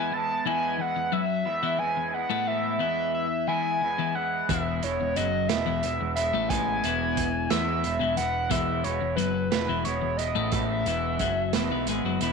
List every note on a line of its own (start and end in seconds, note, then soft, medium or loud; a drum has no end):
0.00 0.11 E2 medium
0.00 0.12 E3 medium
0.00 0.12 G#3 medium
0.00 0.12 B3 medium
0.00 0.11 E4 medium
0.00 0.15 G#5 loud
0.12 0.39 E2 medium
0.12 0.45 E3 medium
0.12 0.45 G#3 medium
0.12 0.45 B3 medium
0.12 0.46 E4 medium
0.12 0.48 A5 loud
0.46 0.78 E2 medium
0.46 0.79 E3 medium
0.46 0.79 E3 loud
0.46 0.78 G#3 medium
0.46 0.78 B3 medium
0.46 0.77 E4 medium
0.46 0.82 G#5 loud
0.79 0.95 E2 medium
0.79 1.24 E3 medium
0.79 1.23 G#3 medium
0.79 1.23 B3 medium
0.79 1.23 E4 medium
0.79 1.14 F#5 loud
0.96 1.12 E2 medium
1.12 1.45 F#2 medium
1.12 1.45 F#3 medium
1.12 1.46 E5 loud
1.45 1.62 E2 medium
1.45 1.79 E3 medium
1.45 1.80 G#3 medium
1.45 1.80 B3 medium
1.45 1.80 E4 loud
1.45 1.80 E5 loud
1.63 1.78 E2 medium
1.63 1.79 E3 medium
1.79 1.96 E2 medium
1.79 2.13 E3 medium
1.79 2.13 G#3 medium
1.79 2.13 B3 medium
1.79 2.12 E4 medium
1.79 2.15 G#5 medium
1.97 2.24 E2 medium
2.14 2.46 E3 medium
2.14 2.47 G#3 medium
2.14 2.47 B3 medium
2.14 2.47 E4 medium
2.14 2.49 F#5 medium
2.30 2.79 A2 medium
2.30 2.80 A3 loud
2.47 2.81 E3 medium
2.47 2.81 G#3 medium
2.47 2.81 B3 medium
2.47 2.80 E4 medium
2.47 2.81 E5 loud
2.79 3.46 E2 medium
2.79 3.46 E3 loud
2.79 3.25 E3 medium
2.79 3.25 G#3 medium
2.79 3.25 B3 medium
2.79 3.25 E4 medium
2.79 3.12 E5 loud
3.14 3.49 E5 loud
3.47 3.80 E3 medium
3.47 3.81 E3 medium
3.47 3.82 G#3 medium
3.47 3.82 B3 medium
3.47 3.81 E4 medium
3.47 4.16 G#5 loud
3.81 3.97 E2 medium
3.81 4.15 E3 medium
3.81 4.15 G#3 medium
3.81 4.15 B3 medium
3.81 4.14 E4 medium
3.98 4.14 E2 medium
3.98 4.14 E3 medium
4.15 4.42 E2 medium
4.15 4.48 E3 medium
4.15 4.49 G#3 medium
4.15 4.49 B3 medium
4.15 4.49 E4 medium
4.15 4.51 F#5 medium
4.49 4.80 E1 medium
4.49 4.82 E2 medium
4.49 4.82 E3 medium
4.49 4.82 G#3 medium
4.49 4.82 B3 medium
4.49 4.82 E4 medium
4.49 4.85 E5 medium
4.49 kick loud
4.49 closed hi-hat medium
4.83 4.98 E1 medium
4.83 4.99 E2 medium
4.83 5.27 E3 medium
4.83 5.26 G#3 medium
4.83 5.26 B3 medium
4.83 5.26 E4 medium
4.83 5.18 C#5 medium
4.83 closed hi-hat medium
5.01 5.15 E1 medium
5.01 5.16 E2 medium
5.16 5.48 F#1 medium
5.16 5.48 F#2 medium
5.16 5.49 F#3 medium
5.16 5.48 D#5 loud
5.16 closed hi-hat medium
5.49 5.66 E1 medium
5.49 5.65 E2 medium
5.49 5.83 E3 medium
5.49 5.83 G#3 medium
5.49 5.83 B3 medium
5.49 5.83 E4 medium
5.49 6.12 E5 loud
5.49 snare medium
5.49 closed hi-hat medium
5.66 5.82 E1 medium
5.66 5.82 E2 medium
5.66 5.82 E3 medium
5.83 5.99 E1 medium
5.83 6.00 E2 medium
5.83 6.17 E3 medium
5.83 6.16 G#3 medium
5.83 6.16 B3 medium
5.83 6.15 E4 medium
5.83 closed hi-hat medium
6.01 6.31 E1 medium
6.01 6.27 E2 medium
6.16 6.49 E3 medium
6.16 6.49 G#3 medium
6.16 6.49 B3 medium
6.16 6.49 E4 medium
6.16 6.51 E5 medium
6.16 closed hi-hat medium
6.34 6.80 A1 medium
6.34 6.83 A2 medium
6.34 6.83 A3 medium
6.49 6.83 E3 medium
6.49 6.83 G#3 medium
6.49 6.83 B3 medium
6.49 6.83 E4 medium
6.49 7.50 G#5 loud
6.49 kick loud
6.49 closed hi-hat medium
6.84 7.47 E1 medium
6.84 7.50 E2 medium
6.84 7.28 E3 medium
6.84 7.50 E3 loud
6.84 7.28 G#3 medium
6.84 7.27 B3 medium
6.84 7.27 E4 medium
6.84 closed hi-hat medium
7.17 kick medium
7.17 closed hi-hat medium
7.50 7.82 E2 medium
7.50 7.83 E3 medium
7.50 7.82 E3 medium
7.50 7.83 G#3 medium
7.50 7.83 B3 medium
7.50 7.84 E4 medium
7.50 7.83 E4 medium
7.50 8.14 E5 loud
7.50 snare loud
7.50 closed hi-hat medium
7.83 8.00 E1 medium
7.83 7.98 E2 medium
7.83 8.17 E3 medium
7.83 8.18 G#3 medium
7.83 8.17 B3 medium
7.83 8.17 E4 medium
7.83 closed hi-hat medium
7.99 8.17 E1 medium
7.99 8.16 E2 medium
7.99 8.17 E3 medium
8.17 8.49 E1 medium
8.17 8.44 E2 medium
8.17 8.50 E3 medium
8.17 8.51 G#3 medium
8.17 8.51 B3 medium
8.17 8.51 E4 medium
8.17 8.52 F#5 medium
8.17 closed hi-hat medium
8.50 8.83 E1 loud
8.50 8.83 E2 medium
8.50 8.85 E3 medium
8.50 8.84 E3 loud
8.50 8.84 G#3 medium
8.50 8.84 B3 medium
8.50 8.84 E4 loud
8.50 8.85 E5 medium
8.50 kick loud
8.50 closed hi-hat medium
8.84 9.01 E1 medium
8.84 9.00 E2 medium
8.84 9.29 E3 medium
8.84 9.29 G#3 medium
8.84 9.29 B3 medium
8.84 9.29 E4 medium
8.84 9.15 C#5 medium
8.84 closed hi-hat medium
9.01 9.17 E1 medium
9.01 9.16 E2 medium
9.16 9.50 F#1 loud
9.16 9.50 F#2 medium
9.16 9.50 F#3 medium
9.16 9.48 B4 medium
9.16 closed hi-hat medium
9.51 9.68 E1 medium
9.51 9.67 E2 medium
9.51 9.84 E3 medium
9.51 9.84 G#3 medium
9.51 9.85 B3 medium
9.51 9.85 E4 medium
9.51 9.83 B4 medium
9.51 snare medium
9.51 closed hi-hat medium
9.69 9.85 E1 loud
9.69 9.84 E2 medium
9.69 9.85 E3 medium
9.85 10.02 E1 medium
9.85 10.00 E2 medium
9.85 10.19 E3 medium
9.85 10.18 G#3 medium
9.85 10.18 B3 medium
9.85 10.17 E4 medium
9.85 10.11 C#5 medium
9.85 closed hi-hat medium
10.02 10.34 E1 medium
10.02 10.29 E2 medium
10.11 10.19 C#5 medium
10.17 10.52 E3 medium
10.17 10.52 G#3 medium
10.17 10.53 B3 medium
10.17 10.52 E4 medium
10.17 10.53 D#5 medium
10.17 closed hi-hat medium
10.35 10.83 A1 medium
10.35 10.85 A2 medium
10.35 10.85 A3 loud
10.51 10.86 E3 medium
10.51 10.86 G#3 medium
10.51 10.86 B3 medium
10.51 10.86 E4 loud
10.51 11.86 E5 medium
10.51 kick loud
10.51 closed hi-hat medium
10.86 11.17 E1 medium
10.86 11.19 E2 medium
10.86 11.19 E3 medium
10.86 11.31 E3 medium
10.86 11.31 G#3 medium
10.86 11.30 B3 medium
10.86 11.30 E4 medium
10.86 closed hi-hat medium
11.19 11.51 F#1 medium
11.19 11.53 F#2 medium
11.19 11.53 F#3 medium
11.19 kick medium
11.19 closed hi-hat medium
11.53 11.70 E1 medium
11.53 11.70 E2 medium
11.53 11.70 E3 medium
11.53 11.88 E3 medium
11.53 11.88 G#3 medium
11.53 11.88 B3 medium
11.53 11.88 E4 medium
11.53 snare loud
11.53 closed hi-hat medium
11.71 11.87 B1 medium
11.71 11.86 B2 medium
11.71 11.87 B3 medium
11.87 12.03 G#1 medium
11.87 12.03 G#2 medium
11.87 12.22 E3 medium
11.87 12.04 G#3 medium
11.87 12.22 G#3 medium
11.87 12.21 B3 medium
11.87 12.20 E4 medium
11.87 closed hi-hat medium
12.04 12.20 F#1 medium
12.04 12.20 F#2 medium
12.04 12.21 F#3 medium
12.21 12.32 E1 medium
12.21 12.32 E2 medium
12.21 12.32 E3 medium
12.21 12.32 G#3 medium
12.21 12.32 B3 medium
12.21 12.32 E4 medium
12.21 closed hi-hat medium